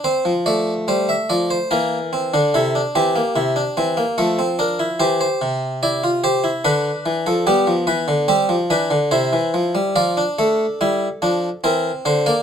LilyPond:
<<
  \new Staff \with { instrumentName = "Harpsichord" } { \time 3/4 \key f \major \tempo 4 = 73 << { c''8 d''8 c''16 e''16 d''16 c''16 bes'4 | a'8 g'4. a'8 bes'8 | c''16 c''8. d''8 c''8 b'8. a'16 | g'8 b'8 g'8 b'8 c''4 |
\key d \minor d''8 a'4. bes'8 c''16 d''16 | } \\ { c'8 a4. bes8 c'16 d'16 | e'16 d'16 c'16 bes16 e'16 d'16 c'16 bes16 a16 c'16 d'16 e'16 | g'4 e'16 f'16 g'16 e'16 d'4 | b4 c'8 d'8 e'4 |
f'16 d'8. e'8 d'8 c'8. bes16 | } >> }
  \new Staff \with { instrumentName = "Harpsichord" } { \clef bass \time 3/4 \key f \major r16 f8. g8 f8 e8. d16 | c8 e8 c8 e8 f4 | e8 c4. d8 e16 f16 | g16 f16 e16 d16 g16 f16 e16 d16 c16 e16 f16 g16 |
\key d \minor f8 a8 g8 f8 e8 d8 | }
>>